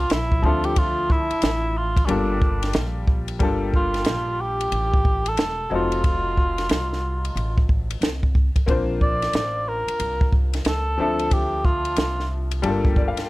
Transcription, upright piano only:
0.00 0.39 F3 medium
0.00 0.40 A#3 medium
0.00 0.40 C4 medium
0.00 0.41 D4 medium
0.00 0.41 A4 medium
0.42 2.05 F3 medium
0.42 2.05 C4 medium
0.42 2.06 D4 medium
0.42 2.06 E5 medium
0.46 2.07 A4 medium
2.07 3.37 G3 medium
2.07 3.37 A#3 medium
2.07 3.38 D4 medium
2.07 3.38 F4 medium
2.07 3.39 A4 medium
3.39 5.67 G3 medium
3.39 5.67 A#3 medium
3.39 5.67 D4 medium
3.39 5.68 F4 medium
3.39 5.68 A4 medium
5.70 8.30 F#3 medium
5.70 8.31 C4 medium
5.70 8.31 D#4 medium
5.70 8.32 F4 medium
5.70 8.32 A4 medium
8.66 10.94 A#3 medium
8.66 10.94 C4 medium
8.66 10.95 D4 medium
8.66 10.95 F4 medium
8.66 10.96 C5 medium
10.97 12.60 F3 medium
10.97 12.60 C4 medium
10.97 12.60 D4 medium
10.97 12.61 A4 medium
10.97 12.61 E5 medium
12.62 13.29 G3 medium
12.62 12.71 A3 medium
12.62 13.29 D4 medium
12.62 13.29 F4 medium
12.62 13.29 A4 medium
12.70 13.29 A#3 medium
12.97 13.07 D5 medium
13.08 13.28 F5 medium

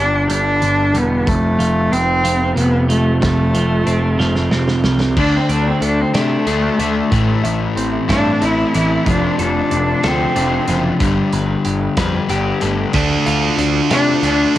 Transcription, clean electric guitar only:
0.00 0.94 G2 medium
0.00 0.29 D3 medium
0.00 0.27 G3 medium
0.00 1.27 D4 medium
0.28 0.93 G3 medium
0.61 1.27 D3 medium
0.94 1.27 G3 medium
1.26 2.89 F2 medium
1.59 2.23 F3 medium
2.24 2.88 F3 medium
2.56 4.19 C3 medium
2.89 3.53 F3 medium
3.21 4.84 F2 medium
3.55 4.18 F3 medium
3.87 5.17 C4 medium
4.19 4.83 F3 medium
4.52 5.17 C3 medium
4.84 5.17 F3 medium
5.17 6.78 D3 medium
5.49 6.13 D4 medium
5.82 6.46 A3 medium
6.14 7.12 D4 medium
6.47 7.76 A3 medium
6.79 7.12 D3 medium
7.11 8.74 A2 medium
7.44 8.08 E4 medium
7.76 8.40 C4 medium
8.09 9.06 E4 medium
8.41 9.06 C4 medium
8.75 9.06 E3 medium
9.06 10.67 F3 medium
9.39 10.04 A4 medium
9.71 10.35 D4 medium
10.04 11.03 A4 medium
10.36 13.58 D4 medium
10.68 10.99 F3 medium
11.00 12.62 G3 medium
11.33 11.97 B4 medium
11.65 12.29 G4 medium
11.98 12.95 B4 medium
12.30 12.95 G4 medium
12.62 14.58 A3 medium
12.95 14.54 D3 medium
13.26 13.89 F4 medium
13.59 14.21 D4 medium
13.91 14.58 F4 medium
14.23 14.58 D4 medium

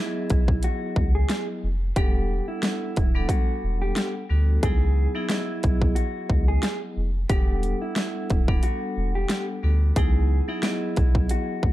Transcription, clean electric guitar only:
0.00 0.59 E4 medium
0.64 1.12 F#4 medium
1.15 1.45 G#4 medium
1.97 2.45 G4 medium
2.48 3.26 E4 medium
3.30 3.78 F#4 medium
3.82 4.12 G4 medium
4.63 5.12 G#4 medium
5.15 5.93 E4 medium
5.95 6.45 F#4 medium
6.48 6.78 G#4 medium
7.29 7.78 G4 loud
7.82 8.59 E4 medium
8.63 9.12 F#4 medium
9.15 9.45 G4 medium
9.97 10.45 G#4 medium
10.48 11.26 E4 medium
11.31 11.73 F#4 medium

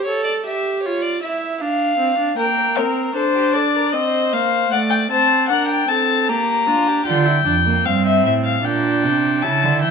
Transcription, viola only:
0.08 0.45 A4 medium
0.46 0.87 G4 medium
0.86 1.22 F4 medium
1.23 1.62 E4 medium
1.61 1.98 D4 medium
1.99 2.18 C4 medium
2.19 2.37 D4 medium
2.38 2.79 A#3 medium
2.78 3.15 C4 medium
3.15 3.95 D4 medium
3.93 4.34 C4 medium
4.32 4.71 A#3 medium
4.71 5.10 A3 medium
5.10 5.51 C4 medium
5.50 5.88 D4 medium
5.89 6.30 C4 medium
6.29 6.69 A#3 medium
6.67 7.05 D4 medium
7.06 7.27 F4 medium
7.26 7.45 E4 medium
7.45 7.53 D4 medium
7.66 7.86 A#3 medium
7.85 8.63 C4 medium
8.63 9.44 D4 medium
9.42 9.91 E4 medium

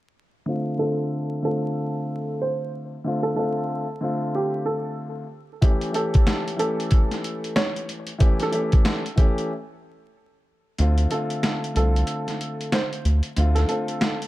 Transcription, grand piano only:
0.46 0.76 D3 medium
0.46 0.77 A3 medium
0.46 0.77 C4 medium
0.46 0.78 F4 loud
0.78 1.39 D3 medium
0.78 1.39 A3 medium
0.78 1.40 C4 medium
0.78 1.40 F4 loud
1.42 2.94 D3 medium
1.42 2.94 A3 medium
1.42 2.95 C4 medium
1.42 2.95 F4 medium
3.04 3.34 D3 medium
3.04 3.35 A3 medium
3.04 3.36 C4 medium
3.04 3.36 F4 loud
3.36 3.83 D3 medium
3.36 3.84 A3 medium
3.36 3.84 C4 medium
3.36 3.85 F4 medium
4.01 5.22 D3 medium
4.01 5.22 A3 medium
4.01 5.23 C4 medium
4.01 5.23 F4 loud
5.62 5.91 E3 medium
5.62 5.92 A3 medium
5.62 5.93 C#4 medium
5.62 5.94 G4 loud
5.92 6.54 E3 medium
5.92 6.55 A3 medium
5.92 6.55 C#4 medium
5.92 6.56 G4 loud
6.57 8.09 E3 medium
6.57 8.10 A3 medium
6.57 8.10 C#4 medium
6.57 8.11 G4 medium
8.18 8.50 E3 loud
8.18 8.50 A3 medium
8.18 8.51 C#4 medium
8.18 8.51 G4 loud
8.52 8.99 E3 medium
8.52 9.00 A3 medium
8.52 9.00 C#4 medium
8.52 9.01 G4 loud
9.16 9.49 E3 medium
9.16 9.49 A3 medium
9.16 9.50 C#4 medium
9.16 9.50 G4 loud
10.78 11.08 D3 medium
10.78 11.09 A3 medium
10.78 11.10 C4 medium
10.78 11.10 F4 loud
11.10 11.71 D3 medium
11.10 11.71 A3 medium
11.10 11.72 C4 medium
11.10 11.72 F4 loud
11.75 13.26 D3 medium
11.75 13.27 A3 medium
11.75 13.27 C4 medium
11.75 13.28 F4 loud
13.36 13.67 D3 loud
13.36 13.67 A3 medium
13.36 13.68 C4 medium
13.36 13.68 F4 loud
13.68 14.16 D3 medium
13.68 14.16 A3 medium
13.68 14.17 C4 medium
13.68 14.17 F4 loud

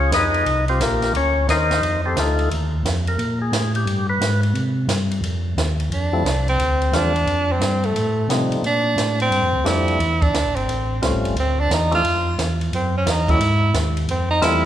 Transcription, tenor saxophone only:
5.93 6.44 D4 medium
6.49 6.97 C4 medium
6.96 7.54 D4 medium
7.52 7.87 C4 medium
7.85 8.30 A3 medium
8.66 9.17 D4 medium
9.21 9.68 C4 medium
9.67 10.23 E4 medium
10.22 10.57 D4 medium
10.56 11.02 C4 medium
11.39 11.61 C4 medium
11.60 11.74 D4 medium
11.73 11.93 D#4 medium
11.95 12.36 F4 loud
12.75 12.94 C4 medium
12.97 13.11 C#4 medium
13.10 13.32 D#4 medium
13.31 13.76 E4 loud
14.11 14.30 C4 medium
14.30 14.45 D#4 loud
14.44 14.65 E4 medium

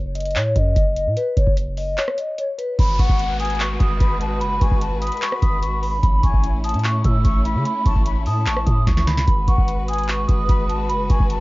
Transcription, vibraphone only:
0.15 0.31 D#5 medium
0.35 0.51 C#5 medium
0.56 1.13 D#5 medium
1.17 1.32 B4 loud
1.37 1.52 C#5 medium
1.78 1.93 D#5 medium
1.98 2.13 C#5 medium
2.18 2.34 D#5 medium
2.38 2.54 C#5 medium
2.58 2.74 B4 medium
2.80 2.95 B5 loud
3.40 3.55 D#6 medium
3.60 3.75 C#6 medium
3.80 4.37 D#6 medium
4.41 4.56 B5 loud
4.62 4.77 C#6 medium
5.02 5.17 D#6 medium
5.22 5.38 C#6 medium
5.43 5.58 D#6 medium
5.63 5.79 C#6 medium
5.83 5.98 B5 medium
6.03 6.19 B5 loud
6.23 6.39 C#6 medium
6.64 6.80 D#6 medium
6.84 7.00 C#6 medium
7.05 7.62 E6 medium
7.66 7.81 B5 loud
7.86 8.01 C#6 medium
8.27 8.42 D#6 medium
8.47 8.62 C#6 medium
8.66 8.82 D#6 medium
8.87 9.03 C#6 medium
9.07 9.22 B5 medium
9.27 9.43 B5 loud
9.48 9.64 C#6 loud
9.88 10.04 D#6 medium
10.09 10.24 C#6 medium
10.28 10.85 D#6 medium
10.89 11.05 B5 loud
11.10 11.25 C#6 medium

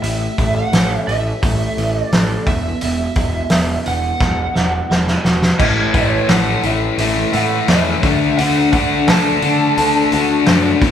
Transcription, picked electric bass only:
0.02 0.26 A1 medium
0.39 0.62 A1 medium
0.72 0.96 A1 medium
1.08 1.31 A1 medium
1.43 1.66 A1 medium
1.77 2.01 A1 medium
2.12 2.36 A1 medium
2.47 2.70 E1 medium
2.83 3.06 E1 medium
3.16 3.39 E1 medium
3.52 3.76 E1 medium
3.88 4.11 E1 medium
4.21 4.44 E1 medium
4.57 4.80 E1 medium
4.90 5.14 E1 medium
5.25 5.48 E1 medium
5.60 5.85 A1 medium
5.94 6.19 A1 medium
6.29 6.54 A1 medium
6.64 6.89 A1 medium
6.98 7.23 A1 medium
7.34 7.59 A2 medium
7.68 7.93 E2 medium
8.03 8.28 D2 medium
8.39 8.88 D2 medium
9.08 9.33 D2 medium
9.42 9.67 D3 medium
9.78 10.02 D2 medium
10.13 10.38 D2 medium
10.48 10.72 F#2 medium
10.81 10.91 E1 medium

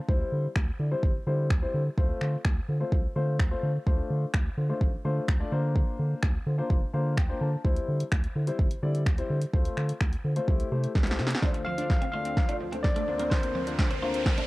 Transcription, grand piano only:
0.08 0.45 G3 medium
0.08 0.45 C4 medium
0.08 0.45 E4 medium
0.08 0.45 C5 medium
0.79 0.85 E4 soft
0.79 0.86 D5 medium
0.91 1.09 G3 medium
0.91 1.09 C4 medium
0.91 1.09 E4 medium
0.91 1.10 C5 medium
1.27 1.45 G3 medium
1.27 1.45 C4 medium
1.27 1.45 E4 medium
1.27 1.45 C5 medium
1.62 1.80 G3 medium
1.62 1.80 C4 medium
1.62 1.80 E4 medium
1.62 1.80 C5 medium
1.98 2.34 A3 medium
1.98 2.34 C4 medium
1.98 2.34 F4 medium
1.98 2.34 C5 medium
2.68 2.74 F4 soft
2.68 2.75 C5 medium
2.80 2.98 A3 medium
2.80 2.98 C4 medium
2.80 2.98 F4 medium
2.80 2.98 C5 medium
3.16 3.34 A3 medium
3.16 3.34 C4 medium
3.16 3.34 F4 medium
3.16 3.34 C5 medium
3.51 3.69 A3 medium
3.51 3.69 C4 medium
3.51 3.69 F4 medium
3.51 3.69 C5 medium
3.86 4.23 A3 medium
3.86 4.23 D4 medium
3.86 4.23 F4 medium
3.86 4.23 C5 medium
4.57 4.63 F4 soft
4.57 4.64 C5 medium
4.69 4.87 A3 medium
4.69 4.87 D4 medium
4.69 4.87 F4 medium
4.69 4.87 C5 medium
5.05 5.23 A3 medium
5.05 5.23 D4 medium
5.05 5.23 F4 medium
5.05 5.23 C5 medium
5.40 5.52 A3 medium
5.40 5.50 D4 medium
5.40 5.51 F4 medium
5.40 5.52 D5 medium
5.52 6.27 A#3 medium
5.52 6.28 D4 medium
5.52 6.28 F4 medium
5.52 6.28 C5 medium
6.46 6.52 F4 soft
6.46 6.53 C5 medium
6.58 6.76 A#3 medium
6.58 6.76 D4 medium
6.58 6.76 F4 medium
6.58 6.76 C5 medium
6.93 7.12 A#3 medium
6.93 7.12 D4 medium
6.93 7.12 F4 medium
6.93 7.12 C5 medium
6.93 7.16 F5 medium
7.17 7.39 G5 medium
7.29 7.47 A#3 medium
7.29 7.47 D4 medium
7.29 7.47 F4 medium
7.29 7.47 C5 medium
7.41 7.63 A5 medium
7.64 8.01 G3 medium
7.64 8.01 C4 medium
7.64 8.01 E4 medium
7.64 8.01 C5 medium
8.35 8.41 E4 soft
8.35 8.42 C5 medium
8.47 8.65 G3 medium
8.47 8.65 C4 medium
8.47 8.65 E4 medium
8.47 8.65 C5 medium
8.82 9.01 G3 medium
8.82 9.01 C4 medium
8.82 9.01 E4 medium
8.82 9.01 D5 medium
9.18 9.36 G3 medium
9.18 9.36 C4 medium
9.18 9.36 E4 medium
9.18 9.36 C5 loud
9.53 9.90 A3 medium
9.53 9.90 C4 medium
9.53 9.90 F4 medium
9.53 9.90 C5 medium
10.24 10.30 F4 soft
10.24 10.31 C5 medium
10.36 10.46 A3 medium
10.36 10.48 C4 medium
10.36 10.48 F4 medium
10.36 10.47 C5 medium
10.48 10.67 A3 medium
10.48 10.67 E4 medium
10.48 10.67 G4 medium
10.48 10.67 C5 medium
10.71 10.90 A3 medium
10.71 10.90 E4 medium
10.71 10.90 G4 medium
10.71 10.90 C5 medium
11.07 11.25 A3 medium
11.07 11.25 E4 medium
11.07 11.25 G4 medium
11.07 11.25 C5 medium
11.42 11.60 A3 medium
11.42 11.61 D4 medium
11.42 11.61 F4 medium
11.42 11.61 C5 medium
11.78 11.96 A3 medium
11.78 11.96 D4 medium
11.78 11.96 F4 medium
11.78 11.96 C5 medium
12.13 12.37 A3 medium
12.13 12.37 D4 medium
12.13 12.38 F4 medium
12.13 12.38 D5 medium
12.60 12.67 F4 soft
12.60 12.67 C5 soft
12.72 13.02 A3 medium
12.72 13.02 D4 medium
12.72 13.03 F4 medium
12.72 13.03 C5 medium
13.08 13.55 D3 medium
13.08 13.55 A#3 medium
13.08 13.55 D4 medium
13.08 13.55 F4 medium
13.08 13.55 C5 medium
13.67 13.85 D3 medium
13.67 13.85 A#3 medium
13.67 13.85 D4 medium
13.67 13.85 F4 medium
13.67 13.85 C5 medium
14.02 14.26 D3 medium
14.02 14.26 A#3 medium
14.02 14.26 D4 medium
14.02 14.26 F4 medium
14.02 14.27 C5 loud

